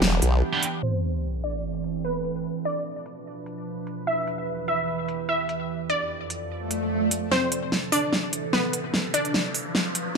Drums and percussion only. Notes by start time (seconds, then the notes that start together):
0.02 snare
0.22 closed hi-hat
0.63 closed hi-hat
1.03 closed hi-hat
1.44 closed hi-hat
1.84 closed hi-hat
2.25 closed hi-hat
2.65 closed hi-hat
3.06 closed hi-hat
3.46 closed hi-hat
3.87 closed hi-hat
4.27 closed hi-hat
4.68 closed hi-hat
5.09 closed hi-hat
5.49 closed hi-hat
5.90 closed hi-hat
6.30 closed hi-hat
6.71 closed hi-hat
7.11 closed hi-hat
7.32 snare
7.52 closed hi-hat
7.72 snare
7.92 open hi-hat
8.13 snare
8.33 closed hi-hat
8.53 snare
8.73 closed hi-hat
8.94 snare
9.14 closed hi-hat
9.25 closed hi-hat
9.34 snare
9.54 open hi-hat
9.75 snare
9.95 closed hi-hat